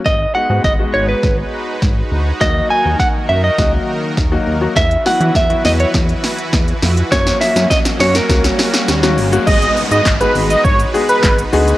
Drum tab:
CC |----------------|----------------|----------------|----------------|
HH |----------------|----------------|-xox-xox-xox-xox|-xox-xox-xox-xox|
SH |----------------|----------------|----------------|xxxxxxxxxxxxxxxx|
CP |----------------|----------------|----------------|----------------|
SD |o---o---o---o---|o---o---o---o---|o-o-o-o-o-o-o-o-|oooooooooooooo--|
BD |o---o---o---o---|o---o---o---o---|o---o---o---o---|o---o---o-------|

CC |x---------------|
HH |-xox-xox-xox-xox|
SH |xxxxxxxxxxxxxxxx|
CP |----x-------x---|
SD |----o-------o---|
BD |o---o---o---o---|